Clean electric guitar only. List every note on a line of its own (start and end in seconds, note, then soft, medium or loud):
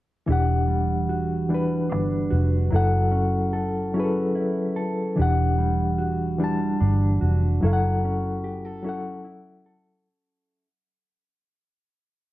0.28 2.74 E3 medium
0.68 1.48 G3 soft
1.09 2.30 F#4 medium
1.49 2.70 G3 soft
1.90 2.80 D4 soft
2.31 4.35 F#4 medium
2.71 5.19 F#3 medium
3.11 3.93 C#4 soft
3.53 4.75 A4 medium
3.94 5.25 C#4 medium
4.35 5.98 E4 medium
4.76 5.25 A4 medium
5.16 7.66 E3 medium
5.58 6.38 G3 soft
5.98 7.21 F#4 medium
6.40 7.62 G3 medium
6.81 7.70 D4 soft
7.21 8.47 F#4 medium
7.63 10.65 F#3 medium
8.04 8.84 C#4 soft
8.44 8.65 G4 medium
8.65 9.65 A4 soft
8.84 10.65 C#4 medium
9.24 10.65 E4 soft
9.66 10.65 A4 medium